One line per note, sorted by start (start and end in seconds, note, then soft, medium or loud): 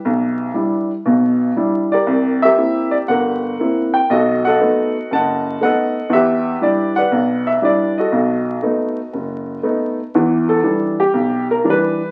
0.00 0.88 G4 soft
0.00 0.88 B4 soft
0.00 0.88 E5 medium
0.05 0.49 B1 medium
0.54 0.90 G3 soft
0.54 0.91 D4 soft
0.54 0.91 E4 medium
1.05 1.50 B1 medium
1.05 1.50 B2 medium
1.56 1.92 G3 soft
1.56 1.92 D4 soft
1.56 1.92 E4 soft
1.92 2.43 G4 soft
1.92 2.44 A#4 medium
1.92 2.38 D5 medium
2.07 2.51 C2 medium
2.42 3.40 G4 medium
2.42 3.09 A#4 medium
2.42 2.94 E5 loud
2.57 2.93 A#3 soft
2.57 2.93 C4 soft
2.57 2.93 E4 medium
2.91 2.96 D5 medium
3.08 3.52 G1 medium
3.08 4.06 A#4 medium
3.08 3.95 F#5 medium
3.59 3.94 A#3 soft
3.59 3.95 C4 soft
3.59 3.95 E4 medium
3.94 4.10 G5 medium
4.10 4.53 B1 medium
4.10 5.08 F#4 medium
4.10 4.46 A4 medium
4.10 4.41 D#5 medium
4.45 5.42 A4 medium
4.45 5.14 D#5 medium
4.45 5.13 F#5 medium
4.60 4.95 A3 soft
4.60 4.95 B3 soft
4.60 4.95 D#4 soft
5.11 5.54 F#1 medium
5.11 5.61 F#5 medium
5.11 5.63 A5 medium
5.15 5.63 D#5 medium
5.61 5.96 A3 soft
5.61 5.96 B3 soft
5.61 5.96 D#4 medium
5.61 6.10 D#5 medium
5.61 6.14 F#5 medium
5.65 6.10 A4 medium
6.10 6.54 E2 medium
6.10 6.59 E5 medium
6.14 7.10 G4 medium
6.14 6.97 B4 medium
6.61 6.97 G3 soft
6.61 6.97 D4 soft
6.61 6.97 E4 medium
6.61 6.97 D5 medium
6.96 7.94 B4 medium
6.96 7.63 D5 medium
6.96 7.47 F#5 medium
7.12 7.55 B1 medium
7.47 7.63 E5 medium
7.62 7.97 G3 soft
7.62 7.98 D4 soft
7.62 7.98 E4 medium
7.62 7.95 D5 medium
7.98 9.95 F#4 medium
7.98 9.95 A4 medium
7.98 9.94 D#5 medium
8.12 8.56 B1 medium
8.62 8.98 A3 soft
8.62 8.98 B3 soft
8.62 8.98 D#4 medium
9.13 9.57 F#1 medium
9.63 9.99 A3 soft
9.63 9.99 B3 soft
9.63 9.99 D#4 medium
10.15 10.58 E2 medium
10.15 10.58 E3 medium
10.49 10.95 A4 medium
10.63 10.99 E3 soft
10.63 11.00 G3 soft
10.63 11.00 D4 medium
11.00 11.46 G4 medium
11.14 11.58 B1 medium
11.51 11.66 A#4 medium
11.64 12.00 E3 soft
11.64 12.00 G3 soft
11.64 12.01 D4 medium
11.70 12.11 B4 medium